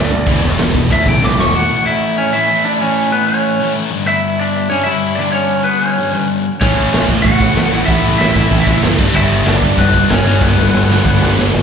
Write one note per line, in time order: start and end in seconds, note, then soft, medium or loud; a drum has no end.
0.00 0.28 D2 loud
0.00 0.10 B3 loud
0.00 0.11 D4 medium
0.00 0.58 D5 loud
0.11 0.25 G2 medium
0.11 0.25 D3 medium
0.26 0.41 E1 loud
0.26 0.42 E2 loud
0.26 0.42 B2 loud
0.26 0.73 E3 medium
0.26 0.42 E3 loud
0.26 0.73 G#3 medium
0.26 0.73 B3 loud
0.26 0.73 E4 loud
0.26 kick loud
0.26 crash medium
0.43 0.58 E1 loud
0.43 0.57 E2 medium
0.43 0.57 B2 medium
0.58 0.88 E1 medium
0.58 0.73 E2 medium
0.58 0.73 B2 medium
0.58 snare loud
0.58 crash medium
0.74 0.88 E2 medium
0.74 0.89 B2 medium
0.74 1.53 E3 medium
0.74 1.53 G#3 medium
0.74 1.53 B3 medium
0.74 1.52 E4 medium
0.74 kick loud
0.90 1.05 D2 medium
0.90 1.04 E2 medium
0.90 1.05 B2 medium
0.90 1.07 E5 loud
0.90 kick loud
0.90 crash medium
1.06 1.21 A1 medium
1.06 1.20 E2 medium
1.06 1.21 B2 medium
1.06 1.23 G5 medium
1.06 kick medium
1.21 1.37 B1 medium
1.21 1.36 E2 medium
1.21 1.36 B2 medium
1.21 1.39 D6 medium
1.21 snare medium
1.38 1.53 E1 loud
1.38 1.52 E2 medium
1.38 1.52 B2 medium
1.38 1.55 C#6 loud
1.38 snare loud
1.53 2.32 A2 loud
1.53 2.33 E3 loud
1.53 2.31 A3 loud
1.53 1.84 F#4 medium
1.53 1.87 F#5 medium
1.86 2.15 E4 medium
1.86 2.19 E5 loud
2.18 2.32 C#4 medium
2.18 2.32 C#5 medium
2.32 2.47 A2 medium
2.32 2.48 E3 medium
2.32 2.47 A3 medium
2.32 2.62 E4 medium
2.32 2.66 E5 loud
2.48 2.78 A2 medium
2.48 2.79 E3 medium
2.48 2.80 A3 medium
2.65 2.80 D4 medium
2.65 2.81 D5 medium
2.79 3.58 A2 loud
2.79 3.59 E3 loud
2.79 3.58 A3 loud
2.79 3.10 C#4 medium
2.79 3.12 C#5 medium
3.12 3.27 B3 medium
3.12 3.27 B4 medium
3.27 3.73 C#4 medium
3.27 3.72 C#5 medium
3.60 3.73 A2 medium
3.60 3.75 E3 medium
3.60 3.75 A3 medium
3.74 3.90 A2 medium
3.74 3.91 E3 medium
3.74 3.91 A3 medium
3.91 4.68 G2 loud
3.91 4.70 D3 medium
3.91 4.71 G3 medium
4.07 4.37 E4 medium
4.07 4.40 E5 loud
4.39 4.70 D4 medium
4.39 4.69 D5 loud
4.70 4.85 G2 medium
4.70 4.86 D3 medium
4.70 4.85 G3 medium
4.70 4.86 C#4 medium
4.70 4.87 C#5 loud
4.84 5.18 D3 medium
4.84 5.17 G3 loud
4.84 5.16 E4 medium
4.84 5.18 E5 loud
4.88 5.17 G2 medium
5.16 5.97 G2 medium
5.16 5.33 D4 medium
5.16 5.32 D5 medium
5.20 5.97 D3 loud
5.20 5.98 G3 medium
5.32 5.64 C#4 medium
5.32 5.64 C#5 medium
5.64 5.81 B3 medium
5.64 5.80 B4 medium
5.80 6.27 C#4 medium
5.80 6.25 C#5 medium
5.98 6.13 G2 medium
5.98 6.14 D3 medium
5.98 6.13 G3 medium
6.14 6.46 G2 medium
6.14 6.45 D3 medium
6.14 6.45 G3 loud
6.61 6.73 A1 loud
6.61 6.78 A2 medium
6.61 7.40 A2 loud
6.61 6.77 E3 medium
6.61 7.40 E3 loud
6.61 6.77 A3 loud
6.61 7.39 A3 loud
6.61 7.06 C#4 medium
6.61 6.76 C#4 loud
6.61 6.76 E4 loud
6.61 7.05 C#5 medium
6.61 kick loud
6.61 crash medium
6.77 6.89 A1 loud
6.77 6.92 A2 medium
6.77 6.92 E3 medium
6.77 6.93 A3 medium
6.77 6.93 C#4 medium
6.77 6.93 E4 loud
6.92 7.05 A1 medium
6.92 7.09 A2 loud
6.92 7.09 E3 loud
6.92 7.08 A3 medium
6.92 7.08 C#4 medium
6.92 7.07 E4 loud
6.92 snare loud
6.92 crash medium
7.09 7.20 A1 medium
7.09 7.23 A2 medium
7.09 7.24 E3 medium
7.09 7.24 A3 medium
7.09 7.25 C#4 loud
7.09 7.25 E4 loud
7.09 kick medium
7.22 7.48 A1 medium
7.22 7.40 A2 loud
7.22 7.40 E3 loud
7.22 7.40 A3 loud
7.22 7.40 C#4 loud
7.22 7.39 E4 loud
7.22 7.84 F#4 medium
7.22 7.85 F#5 loud
7.22 kick loud
7.22 crash medium
7.40 7.55 A2 medium
7.40 7.56 E3 medium
7.40 7.55 E3 medium
7.40 7.55 A3 loud
7.40 7.55 A3 medium
7.40 7.56 C#4 medium
7.40 7.56 E4 loud
7.40 kick medium
7.56 7.68 A1 medium
7.56 7.72 A2 loud
7.56 7.86 A2 medium
7.56 7.72 E3 loud
7.56 7.87 E3 medium
7.56 7.72 A3 loud
7.56 7.88 A3 medium
7.56 7.71 C#4 loud
7.56 7.71 E4 medium
7.56 snare loud
7.56 crash medium
7.72 7.84 A1 medium
7.72 7.87 A2 medium
7.72 7.87 E3 medium
7.72 7.87 A3 medium
7.72 7.88 C#4 loud
7.72 7.88 E4 loud
7.85 8.00 A1 loud
7.85 8.66 A2 medium
7.85 8.04 A2 loud
7.85 8.03 E3 medium
7.85 8.67 E3 loud
7.85 8.03 A3 loud
7.85 8.03 C#4 loud
7.85 8.18 E4 medium
7.85 8.17 E5 medium
7.85 kick loud
7.85 crash medium
7.89 8.66 A3 loud
7.89 8.02 E4 loud
8.03 8.16 A1 medium
8.03 8.18 A2 medium
8.03 8.19 E3 medium
8.03 8.19 A3 medium
8.03 8.19 C#4 medium
8.03 8.20 E4 medium
8.18 8.31 A1 medium
8.18 8.36 A2 loud
8.18 8.36 E3 loud
8.18 8.35 A3 medium
8.18 8.35 E4 medium
8.18 8.35 E4 loud
8.18 8.33 E5 loud
8.18 snare loud
8.18 crash medium
8.34 8.47 A1 loud
8.34 8.50 A2 medium
8.34 8.50 E3 medium
8.34 8.51 A3 medium
8.34 8.51 C#4 loud
8.34 8.51 E4 medium
8.34 8.80 E4 medium
8.34 8.79 E5 loud
8.34 kick medium
8.51 8.63 A1 loud
8.51 8.67 A2 loud
8.51 8.67 E3 loud
8.51 8.67 A3 loud
8.51 8.66 C#4 loud
8.51 8.66 E4 loud
8.51 kick loud
8.51 crash medium
8.67 8.79 A1 medium
8.67 8.81 A2 medium
8.67 8.81 E3 medium
8.67 8.82 E3 medium
8.67 8.82 A3 loud
8.67 8.81 A3 medium
8.67 8.82 C#4 loud
8.67 8.82 E4 loud
8.67 kick medium
8.82 8.95 F#1 medium
8.82 8.98 A2 loud
8.82 8.98 A2 medium
8.82 8.98 E3 loud
8.82 8.98 E3 medium
8.82 8.98 A3 loud
8.82 8.99 A3 medium
8.82 8.98 C#4 loud
8.82 8.98 E4 loud
8.82 snare loud
8.82 crash medium
8.98 9.11 G1 medium
8.98 9.15 G2 loud
8.98 9.76 G2 medium
8.98 9.14 D3 loud
8.98 9.77 D3 loud
8.98 9.15 G3 loud
8.98 9.78 G3 loud
8.98 9.14 B3 loud
8.98 9.14 D4 loud
8.98 kick loud
8.98 crash loud
9.14 9.27 G1 loud
9.14 9.30 G2 medium
9.14 9.30 D3 loud
9.14 9.31 G3 loud
9.14 9.31 B3 medium
9.14 9.31 D4 loud
9.14 9.44 E4 medium
9.14 9.45 E5 loud
9.14 crash medium
9.30 9.42 G1 loud
9.30 9.47 G2 medium
9.30 9.46 D3 medium
9.30 9.46 G3 loud
9.30 9.46 B3 medium
9.30 9.45 D4 medium
9.46 9.59 G1 loud
9.46 9.61 G2 medium
9.46 9.61 D3 medium
9.46 9.62 G3 medium
9.46 9.62 B3 loud
9.46 9.62 D4 loud
9.46 9.77 D4 medium
9.46 9.77 D5 loud
9.46 snare loud
9.46 crash medium
9.61 9.74 G1 medium
9.61 9.78 G2 medium
9.61 9.77 D3 medium
9.61 9.77 G3 loud
9.61 9.76 B3 loud
9.61 9.76 D4 medium
9.61 kick loud
9.77 10.01 G1 loud
9.77 9.93 G2 medium
9.77 9.92 G2 medium
9.77 9.93 D3 loud
9.77 9.93 D3 medium
9.77 9.93 G3 loud
9.77 9.91 G3 medium
9.77 9.93 B3 loud
9.77 10.08 B3 medium
9.77 9.94 D4 loud
9.77 10.10 B4 medium
9.77 kick loud
9.77 crash medium
9.93 10.10 G2 medium
9.93 10.24 G2 medium
9.93 10.09 D3 loud
9.93 10.25 D3 medium
9.93 10.24 G3 loud
9.93 10.09 G3 medium
9.93 10.09 B3 loud
9.93 10.08 D4 loud
9.93 kick medium
10.09 10.22 G1 loud
10.09 10.24 G2 loud
10.09 10.25 D3 loud
10.09 10.25 G3 loud
10.09 10.25 B3 medium
10.09 10.25 C#4 medium
10.09 10.26 D4 loud
10.09 10.24 C#5 medium
10.09 snare loud
10.09 crash medium
10.25 10.37 G1 medium
10.25 11.03 G2 medium
10.25 10.42 G2 loud
10.25 10.41 D3 loud
10.25 11.04 D3 loud
10.25 10.41 G3 loud
10.25 11.05 G3 loud
10.25 10.41 B3 loud
10.25 10.41 C#4 medium
10.25 10.40 D4 loud
10.25 10.41 C#5 medium
10.41 10.53 G1 loud
10.41 10.57 G2 medium
10.41 10.57 D3 medium
10.41 10.58 G3 medium
10.41 10.58 B3 loud
10.41 11.33 B3 medium
10.41 10.58 D4 loud
10.41 11.37 B4 medium
10.41 kick loud
10.41 snare medium
10.58 10.69 G1 loud
10.58 10.74 G2 medium
10.58 10.74 D3 medium
10.58 10.73 G3 loud
10.58 10.73 B3 medium
10.58 10.72 D4 loud
10.58 snare medium
10.74 10.85 G1 medium
10.74 10.89 G2 medium
10.74 10.89 D3 medium
10.74 10.89 G3 medium
10.74 10.90 B3 loud
10.74 10.90 D4 loud
10.74 snare medium
10.89 11.01 G1 loud
10.89 11.06 G2 medium
10.89 11.06 D3 loud
10.89 11.06 G3 medium
10.89 11.05 B3 medium
10.89 11.05 D4 loud
10.89 snare medium
11.05 11.17 G1 loud
11.05 11.20 G2 medium
11.05 11.20 D3 medium
11.05 11.21 D3 loud
11.05 11.21 G3 loud
11.05 11.19 G3 medium
11.05 11.21 B3 loud
11.05 11.22 D4 loud
11.05 kick loud
11.05 snare medium
11.20 11.33 G1 loud
11.20 11.37 G2 medium
11.20 11.53 G2 medium
11.20 11.52 D3 medium
11.20 11.37 D3 medium
11.20 11.52 G3 medium
11.20 11.37 G3 medium
11.20 11.36 B3 medium
11.20 11.36 D4 medium
11.20 snare medium
11.37 11.49 G1 medium
11.37 11.51 G2 medium
11.37 11.52 D3 medium
11.37 11.52 G3 medium
11.37 11.52 B3 loud
11.37 11.52 D4 loud
11.37 snare loud
11.52 11.62 G1 medium
11.52 11.62 G2 loud
11.52 11.62 D3 loud
11.52 11.62 G3 medium
11.52 11.62 B3 loud
11.52 11.62 D4 loud
11.52 snare loud